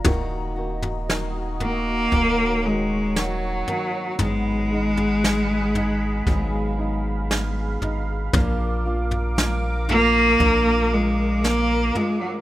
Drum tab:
SD |----o-------o---|----o-------o---|----o-------o---|
FT |o--o--o-o-----o-|o--o--o-o-----o-|o--o--o-o-----o-|
BD |o-------o-------|--------o-------|o-------o-------|